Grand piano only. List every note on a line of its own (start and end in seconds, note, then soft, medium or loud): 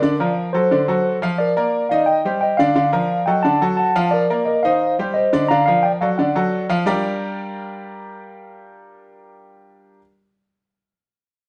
0.02 0.16 D3 medium
0.02 0.17 D4 medium
0.02 0.17 D5 medium
0.20 0.48 F3 medium
0.20 0.48 F4 medium
0.20 0.48 A#4 medium
0.54 0.68 F#3 medium
0.54 0.68 F#4 medium
0.54 0.68 A4 medium
0.71 0.85 D3 medium
0.71 0.85 D4 medium
0.71 0.86 D5 medium
0.88 1.16 F#3 medium
0.88 1.16 F#4 medium
0.88 1.16 A4 medium
1.22 1.50 F3 medium
1.22 1.51 F4 medium
1.22 1.51 F5 loud
1.56 1.84 A#3 medium
1.56 1.85 A#4 medium
1.56 1.85 D5 medium
1.91 2.19 D#3 medium
1.91 2.19 D#4 medium
1.91 2.19 D#5 medium
2.25 2.53 G3 medium
2.25 2.53 G4 medium
2.25 2.53 C5 medium
2.59 2.73 D3 medium
2.59 2.73 D4 loud
2.59 2.73 D5 medium
2.76 2.90 D3 loud
2.76 2.90 D4 medium
2.76 2.90 D5 medium
2.92 3.21 F3 medium
2.92 3.21 F4 medium
2.92 3.21 A#4 medium
3.27 3.41 F#3 medium
3.27 3.41 F#4 medium
3.27 3.42 A4 medium
3.44 3.58 D3 medium
3.44 3.59 D4 medium
3.44 3.59 D5 medium
3.61 3.90 F#3 medium
3.61 3.90 F#4 medium
3.61 3.90 A4 medium
3.96 4.24 F3 loud
3.96 4.24 F4 loud
3.96 4.24 F5 medium
4.30 4.58 A#3 medium
4.30 4.58 A#4 medium
4.30 4.58 D5 medium
4.64 4.92 D#3 medium
4.64 4.93 D#4 medium
4.64 4.93 D#5 medium
4.99 5.27 G3 medium
4.99 5.27 G4 medium
4.99 5.27 C5 medium
5.33 5.47 D3 medium
5.33 5.47 D4 loud
5.33 5.47 D5 loud
5.51 5.64 D3 medium
5.51 5.64 D4 medium
5.51 5.65 D5 medium
5.67 5.95 F3 medium
5.67 5.95 F4 medium
5.67 5.96 A#4 medium
6.01 6.15 F#3 medium
6.01 6.15 F#4 medium
6.01 6.16 A4 medium
6.19 6.33 D3 medium
6.19 6.33 D4 medium
6.19 6.33 D5 medium
6.35 6.63 F#3 medium
6.35 6.64 F#4 medium
6.35 6.64 A4 medium
6.69 6.84 F3 loud
6.69 6.84 F4 loud
6.69 6.84 F5 medium
6.86 9.99 G3 loud
6.86 9.99 D4 medium
6.86 9.99 F4 medium
6.86 9.99 G4 medium
6.86 10.00 A#4 medium
6.86 10.00 D5 loud